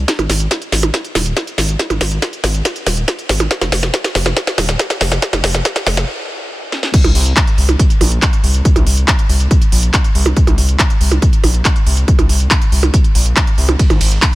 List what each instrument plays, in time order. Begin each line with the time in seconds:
0.08 kick, snare, closed hi-hat
0.19 analog synth bass G#1, closed hi-hat, percussion blips
0.29 analog synth bass G#1, snare, open hi-hat
0.40 closed hi-hat
0.51 kick, snare, closed hi-hat
0.62 closed hi-hat
0.72 analog synth bass G#1, snare, open hi-hat
0.83 closed hi-hat, percussion blips
0.94 kick, snare, closed hi-hat
1.04 closed hi-hat
1.15 analog synth bass D#1, snare, open hi-hat, percussion blips
1.26 closed hi-hat
1.37 kick, snare, closed hi-hat
1.47 closed hi-hat
1.58 analog synth bass G#1, snare, open hi-hat
1.69 closed hi-hat
1.79 kick, snare, closed hi-hat
1.90 analog synth bass G#1, closed hi-hat, percussion blips
2.01 analog synth bass G#1, snare, open hi-hat
2.12 closed hi-hat
2.22 kick, snare, closed hi-hat
2.33 closed hi-hat
2.44 analog synth bass G#1, kick, snare, open hi-hat
2.54 closed hi-hat
2.65 kick, snare, closed hi-hat
2.76 closed hi-hat
2.86 analog synth bass D#1, snare, open hi-hat
2.97 closed hi-hat
3.08 kick, snare, closed hi-hat
3.19 closed hi-hat
3.29 analog synth bass G#1, snare, open hi-hat
3.40 closed hi-hat, percussion blips
3.51 kick, snare, closed hi-hat
3.61 analog synth bass F1, snare, closed hi-hat, percussion blips
3.72 analog synth bass F1, snare, open hi-hat
3.83 snare, closed hi-hat
3.94 kick, snare, closed hi-hat
4.04 snare, closed hi-hat
4.15 analog synth bass F1, snare, open hi-hat
4.26 snare, closed hi-hat, percussion blips
4.37 kick, snare, closed hi-hat
4.47 snare, closed hi-hat
4.58 analog synth bass D#1, snare, open hi-hat, percussion blips
4.69 snare, closed hi-hat
4.79 kick, snare, closed hi-hat
4.90 snare, closed hi-hat
5.01 analog synth bass F1, snare, open hi-hat
5.12 snare, closed hi-hat
5.22 kick, snare, closed hi-hat
5.33 analog synth bass F1, snare, closed hi-hat, percussion blips
5.44 analog synth bass F1, snare, open hi-hat
5.54 snare, closed hi-hat
5.65 kick, snare, closed hi-hat
5.76 snare, closed hi-hat
5.87 analog synth bass F1, kick, snare, open hi-hat
5.97 snare, closed hi-hat
6.72 snare
6.83 snare
6.94 kick, closed hi-hat, crash
7.04 analog synth bass C2, closed hi-hat, percussion blips
7.15 analog synth bass C2, open hi-hat
7.26 closed hi-hat
7.37 kick, clap, closed hi-hat
7.47 closed hi-hat
7.58 analog synth bass C2, open hi-hat
7.69 closed hi-hat, percussion blips
7.79 kick, closed hi-hat
7.90 closed hi-hat
8.01 analog synth bass A#1, open hi-hat, percussion blips
8.12 closed hi-hat
8.22 kick, clap, closed hi-hat
8.33 closed hi-hat
8.44 analog synth bass C2, open hi-hat
8.54 closed hi-hat
8.65 kick, closed hi-hat
8.76 analog synth bass C2, closed hi-hat, percussion blips
8.87 analog synth bass C2, open hi-hat
8.97 closed hi-hat
9.08 kick, clap, closed hi-hat
9.19 closed hi-hat
9.29 analog synth bass C2, open hi-hat
9.40 closed hi-hat
9.51 kick, closed hi-hat
9.62 closed hi-hat
9.72 analog synth bass A#1, open hi-hat
9.83 closed hi-hat
9.94 kick, clap, closed hi-hat
10.04 closed hi-hat
10.15 analog synth bass C2, open hi-hat
10.26 closed hi-hat, percussion blips
10.37 kick, closed hi-hat
10.47 analog synth bass C2, closed hi-hat, percussion blips
10.58 analog synth bass C2, open hi-hat
10.69 closed hi-hat
10.79 kick, clap, closed hi-hat
10.90 closed hi-hat
11.01 analog synth bass C2, open hi-hat
11.12 closed hi-hat, percussion blips
11.22 kick, closed hi-hat
11.33 closed hi-hat
11.44 analog synth bass A#1, open hi-hat, percussion blips
11.54 closed hi-hat
11.65 kick, clap, closed hi-hat
11.76 closed hi-hat
11.86 analog synth bass C2, open hi-hat
11.97 closed hi-hat
12.08 kick, closed hi-hat
12.19 analog synth bass C2, closed hi-hat, percussion blips
12.29 analog synth bass C2, open hi-hat
12.40 closed hi-hat
12.51 kick, clap, closed hi-hat
12.62 closed hi-hat
12.72 analog synth bass C2, open hi-hat
12.83 closed hi-hat, percussion blips
12.94 kick, closed hi-hat
13.04 closed hi-hat
13.15 analog synth bass A#1, open hi-hat
13.26 closed hi-hat
13.37 kick, clap, closed hi-hat
13.47 closed hi-hat
13.58 analog synth bass C2, open hi-hat
13.69 closed hi-hat, percussion blips
13.79 kick, closed hi-hat, ride
13.90 analog synth bass G#1, closed hi-hat, percussion blips
14.01 analog synth bass G#1, open hi-hat, ride
14.12 closed hi-hat
14.22 kick, clap, closed hi-hat, ride